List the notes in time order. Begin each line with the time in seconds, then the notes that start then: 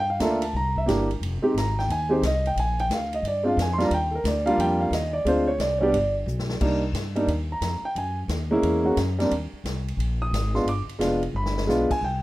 Already playing: G2
0.10 F5
0.20 D2 A#3 D4 F4 A4 E5, snare, hi-hat pedal, ride
0.42 A5, ride
0.53 C2 A#5
0.76 E5, kick
0.86 G1 A#3 D4 E4 G4, snare, hi-hat pedal, ride
1.11 ride
1.20 F1, ride
1.42 G#3 C4 D#4 G4, muted upright bass stroke
1.54 G#1 A#5, snare, hi-hat pedal, ride
1.79 G5, snare
1.88 D#2 G#5, ride
2.09 G#3 C4 D#4 G4 C5
2.22 C2, snare, hi-hat pedal, ride
2.26 D#5
2.46 G5, ride
2.56 A#1 G#5, ride
2.79 G5, ride
2.89 D2, snare, hi-hat pedal, ride
2.93 F5
3.13 D#5, ride
3.22 G2, ride
3.28 D5
3.43 G#3 C4 D4 F4
3.48 F5
3.57 F2, snare, hi-hat pedal, ride
3.62 G#5
3.73 C6
3.78 G3 A#3 D4 F4, snare, ride
3.84 A#5
3.90 D#2 G5, ride
4.11 A4
4.15 A#4
4.24 D2 D5, snare, hi-hat pedal, ride
4.46 G3 A#3 D4 F4 F5, ride
4.58 F2 G5, ride
4.81 F5
4.91 D#2 D#5, snare, hi-hat pedal, ride
5.13 D5
5.25 D2 G#3 C4 D4 F4 C5, ride
5.48 C#5
5.58 C2 D5, snare, hi-hat pedal, ride
5.78 G3 B3 C#5
5.82 D4 G4 D5
5.92 G1, ride
6.26 B1, hi-hat pedal
6.39 snare
6.49 snare
6.61 C2 G3 A#3 D4 D#4, kick, crash
6.93 G2, snare, hi-hat pedal, ride
7.16 G3 A#3 D4 D#4, ride
7.27 D#2, ride
7.52 A#5
7.61 F2, snare, hi-hat pedal, ride
7.82 G5, muted upright bass stroke
7.95 F#2 G#5, ride
8.28 D#2, snare, hi-hat pedal, ride
8.51 G#3 A#3 C#4 E4
8.63 E2, ride
8.84 G#3 A#3 C#4 F#4
8.97 F#2, snare, hi-hat pedal, ride
9.19 G3 A#3 C4 D4, snare, ride
9.31 D#2, ride
9.53 muted upright bass stroke
9.64 C2, snare, hi-hat pedal, ride
9.88 ride
9.97 A#1, ride
10.22 D#6
10.31 G#1, snare, hi-hat pedal, ride
10.54 G#3 B3 D4 F4 C6, snare
10.65 G1 D6, ride
10.87 muted upright bass stroke, ride
10.99 F1 G#3 B3 D4 F4, snare, hi-hat pedal, ride
11.23 ride
11.33 G1 B5
11.46 snare
11.58 snare
11.67 B1 G#3 B3 D4 F4, snare, hi-hat pedal
11.90 G#5, muted upright bass stroke, kick, crash
12.01 C2 G5